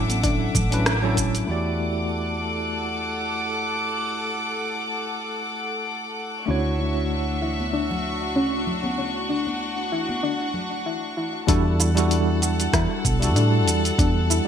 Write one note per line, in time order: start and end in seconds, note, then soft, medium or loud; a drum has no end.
0.00 0.48 A1 medium
0.00 0.50 F#3 medium
0.00 0.51 C#4 medium
0.00 0.52 D4 medium
0.00 0.21 E4 medium
0.00 0.52 E4 medium
0.00 0.53 A4 medium
0.00 1.45 A4 medium
0.00 1.45 E5 medium
0.00 1.45 F#5 medium
0.00 1.45 D6 medium
0.10 open hi-hat medium
0.10 high conga medium
0.10 shaker soft
0.23 0.52 D4 loud
0.23 kick loud
0.23 open hi-hat medium
0.23 shaker soft
0.55 1.42 A1 medium
0.55 kick loud
0.55 open hi-hat soft
0.55 low conga medium
0.55 shaker medium
0.71 0.96 F#3 medium
0.71 0.96 C#4 medium
0.71 0.96 D4 medium
0.71 0.96 E4 medium
0.71 0.97 B4 medium
0.71 open hi-hat soft
0.71 shaker soft
0.86 1.05 C#4 medium
0.86 cross-stick loud
0.86 open hi-hat medium
0.86 shaker soft
1.02 1.46 F#3 medium
1.02 1.47 C#4 medium
1.02 1.47 D4 medium
1.02 1.46 E4 medium
1.02 1.48 A4 medium
1.17 kick medium
1.17 open hi-hat soft
1.17 shaker medium
1.35 open hi-hat medium
1.35 shaker soft
1.46 6.46 E2 medium
1.46 6.44 A3 medium
1.46 6.45 E4 medium
1.46 6.45 F#4 medium
1.46 6.46 G4 medium
1.46 6.45 A4 medium
1.46 6.45 F#5 medium
1.46 6.45 D6 medium
1.51 6.47 D5 medium
6.46 11.46 D2 medium
6.46 11.44 A3 medium
6.46 6.78 C#4 medium
6.46 11.45 D4 medium
6.46 11.45 E4 medium
6.46 11.45 F#4 medium
6.46 11.46 F#4 medium
6.46 8.96 E5 medium
6.46 11.45 C#6 medium
6.51 11.46 C#5 medium
6.79 7.08 D4 medium
7.42 7.71 E4 medium
7.60 high conga medium
7.73 8.02 D4 loud
7.91 low conga medium
8.36 8.64 C#4 loud
8.67 low conga medium
8.84 high conga medium
8.98 9.28 C#4 medium
8.98 11.46 F#5 medium
9.29 9.58 D4 medium
9.47 high conga medium
9.92 10.21 E4 medium
10.09 high conga medium
10.23 10.52 D4 medium
10.54 low conga medium
10.86 11.16 E4 medium
11.17 11.46 E4 medium
11.47 12.67 E2 loud
11.47 11.90 G3 loud
11.47 11.90 D4 medium
11.47 11.79 D4 medium
11.47 11.90 E4 medium
11.47 11.90 F#4 medium
11.47 14.48 A4 medium
11.47 11.91 A4 loud
11.47 14.48 F#5 medium
11.47 14.48 A5 medium
11.47 kick loud
11.47 open hi-hat medium
11.47 shaker soft
11.80 12.08 E4 medium
11.80 open hi-hat soft
11.80 shaker medium
11.94 13.17 G3 medium
11.94 13.17 D4 medium
11.94 13.18 E4 medium
11.94 13.18 F#4 medium
11.94 open hi-hat medium
11.94 shaker soft
11.99 13.19 A4 loud
12.11 open hi-hat medium
12.11 shaker soft
12.42 12.71 F#4 medium
12.42 open hi-hat soft
12.42 shaker medium
12.60 open hi-hat soft
12.60 shaker soft
12.73 12.85 E2 medium
12.73 13.02 E4 loud
12.73 kick loud
12.73 cross-stick medium
12.73 open hi-hat medium
12.73 shaker soft
13.05 13.35 B1 medium
13.05 kick loud
13.05 open hi-hat soft
13.05 shaker medium
13.20 14.42 G3 medium
13.20 14.42 D4 medium
13.20 14.43 E4 medium
13.20 14.44 F#4 medium
13.20 open hi-hat soft
13.20 shaker soft
13.24 14.44 A4 loud
13.35 13.67 A2 medium
13.35 13.64 D4 loud
13.35 open hi-hat medium
13.35 shaker soft
13.67 13.90 E2 medium
13.67 open hi-hat soft
13.67 shaker medium
13.85 open hi-hat medium
13.85 shaker soft
13.98 14.38 E2 loud
13.98 14.28 D4 medium
13.98 kick loud
13.98 open hi-hat medium
13.98 shaker soft
14.30 14.48 E4 medium
14.30 open hi-hat soft
14.30 shaker medium